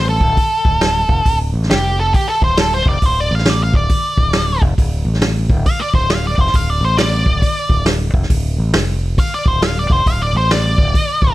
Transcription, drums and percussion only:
0.21 kick
0.37 kick, open hi-hat
0.65 kick
0.81 snare, open hi-hat
1.09 kick
1.26 kick, open hi-hat
1.63 snare
1.70 snare, open hi-hat
2.14 kick, open hi-hat
2.42 kick
2.57 snare, open hi-hat
2.86 kick
3.02 kick, open hi-hat
3.38 snare
3.45 snare, open hi-hat
3.74 kick
3.89 kick, open hi-hat
4.18 kick
4.33 snare, open hi-hat
4.62 kick
4.78 kick, open hi-hat
5.14 snare
5.21 snare, open hi-hat
5.50 kick
5.66 kick, open hi-hat
5.94 kick
6.10 snare, open hi-hat
6.38 kick
6.47 snare
6.53 kick, open hi-hat
6.98 snare, open hi-hat
7.26 kick
7.42 kick, open hi-hat
7.70 kick
7.86 snare, open hi-hat
8.14 kick
8.23 snare
8.30 kick, open hi-hat
8.73 snare, open hi-hat
9.18 kick, open hi-hat
9.46 kick
9.62 snare, open hi-hat
9.90 kick
10.06 kick, open hi-hat
10.51 snare, open hi-hat
10.78 kick
10.94 kick, open hi-hat
11.22 kick

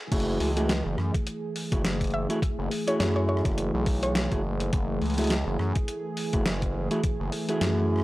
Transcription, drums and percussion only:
0.12 kick, closed hi-hat, crash
0.20 closed hi-hat
0.40 open hi-hat
0.57 closed hi-hat
0.69 snare, closed hi-hat
0.98 cross-stick
1.14 kick, closed hi-hat
1.27 closed hi-hat
1.56 open hi-hat
1.72 kick, closed hi-hat
1.85 snare, closed hi-hat
2.01 kick, closed hi-hat
2.04 closed hi-hat
2.07 closed hi-hat
2.10 closed hi-hat
2.30 closed hi-hat
2.42 kick, closed hi-hat
2.71 open hi-hat
2.88 closed hi-hat
3.00 snare, closed hi-hat
3.37 cross-stick
3.45 kick, cross-stick, closed hi-hat
3.52 cross-stick
3.58 closed hi-hat
3.86 kick, open hi-hat
4.03 closed hi-hat
4.15 snare, closed hi-hat
4.32 kick, closed hi-hat
4.60 closed hi-hat
4.73 kick, closed hi-hat
5.02 open hi-hat
5.06 open hi-hat
5.10 open hi-hat
5.14 closed hi-hat, open hi-hat
5.18 open hi-hat
5.21 open hi-hat
5.24 open hi-hat
5.27 snare, closed hi-hat, open hi-hat
5.59 cross-stick
5.75 kick, closed hi-hat
5.88 closed hi-hat
6.17 open hi-hat
6.33 kick, closed hi-hat
6.46 snare, closed hi-hat
6.62 kick, closed hi-hat
6.91 closed hi-hat
7.04 kick, closed hi-hat
7.32 open hi-hat
7.49 closed hi-hat
7.61 snare, closed hi-hat
7.96 cross-stick
7.99 cross-stick

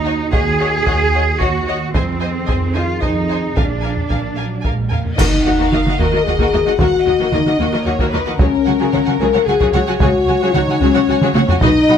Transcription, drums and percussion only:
0.33 taiko
0.87 taiko
1.41 taiko
1.94 taiko
2.49 taiko
3.02 taiko
3.57 taiko
3.97 taiko low
4.10 taiko
4.65 taiko
4.92 taiko low
5.05 taiko low
5.18 concert bass drum, taiko, crash
5.72 taiko mid
5.86 taiko mid
6.39 taiko
6.79 taiko
7.32 taiko mid
7.46 taiko mid
7.99 taiko
8.39 taiko
8.93 taiko mid
9.07 taiko mid
9.61 taiko
10.00 taiko
10.54 taiko mid
10.68 taiko mid
11.21 taiko mid
11.35 taiko high
11.49 taiko low
11.61 taiko

